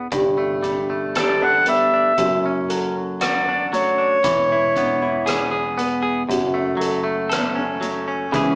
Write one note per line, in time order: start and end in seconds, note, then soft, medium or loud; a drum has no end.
0.00 0.12 E3 medium
0.12 2.13 G1 medium
0.12 2.12 G2 medium
0.12 2.18 G3 medium
0.12 kick medium
0.12 closed hi-hat medium
0.38 0.89 A3 medium
0.63 1.66 G3 soft
0.63 2.29 D4 soft
0.63 kick medium
0.63 closed hi-hat soft
0.90 2.44 A3 soft
1.15 1.39 G4 medium
1.15 2.12 A4 medium
1.15 1.44 D5 medium
1.15 cross-stick medium
1.15 closed hi-hat medium
1.41 1.92 D4 medium
1.41 2.28 A4 soft
1.41 1.67 F#5 medium
1.66 2.12 G3 medium
1.66 2.28 B3 soft
1.66 2.66 E5 medium
1.66 closed hi-hat soft
1.94 2.12 D4 soft
2.17 4.20 F#1 medium
2.17 4.24 F#2 medium
2.17 4.23 F#3 medium
2.17 kick medium
2.17 closed hi-hat medium
2.46 2.96 C#4 soft
2.69 3.71 F#3 medium
2.69 4.34 A4 medium
2.69 closed hi-hat soft
3.21 4.24 F#4 medium
3.21 3.69 D5 medium
3.21 cross-stick medium
3.21 closed hi-hat medium
3.49 3.97 D4 soft
3.72 4.18 F#3 medium
3.72 4.34 A3 soft
3.72 5.74 C#5 loud
3.72 closed hi-hat soft
3.98 4.17 D4 soft
4.24 6.25 E1 medium
4.24 6.29 E3 medium
4.24 kick medium
4.24 closed hi-hat medium
4.52 5.01 E4 medium
4.76 5.76 B3 medium
4.76 4.99 D4 soft
4.76 kick medium
4.76 closed hi-hat soft
5.02 6.39 E4 soft
5.02 6.23 E4 soft
5.26 5.50 G#4 medium
5.26 6.39 G#4 medium
5.26 cross-stick medium
5.26 closed hi-hat medium
5.51 6.01 G#4 medium
5.78 6.22 B3 medium
5.78 6.40 B3 soft
5.78 closed hi-hat soft
6.03 6.22 G#4 medium
6.29 8.29 F#1 medium
6.29 8.33 F#2 medium
6.29 8.34 F#3 medium
6.29 kick soft
6.29 closed hi-hat medium
6.54 7.02 A3 soft
6.77 7.80 F#3 medium
6.77 8.44 A4 medium
6.81 closed hi-hat soft
7.03 8.32 A3 medium
7.29 7.55 B3 soft
7.29 8.26 A4 medium
7.29 cross-stick medium
7.29 closed hi-hat medium
7.55 8.07 C#4 medium
7.55 8.44 C#4 soft
7.81 8.26 F#3 medium
7.81 8.44 A3 soft
7.81 closed hi-hat soft
8.08 8.33 C#4 medium
8.32 8.55 C#2 medium
8.32 8.55 C#3 medium
8.32 8.55 E3 medium
8.32 8.55 B3 medium
8.32 8.55 C#4 medium
8.32 8.55 E4 medium
8.32 8.55 G#4 medium
8.32 kick medium
8.32 closed hi-hat medium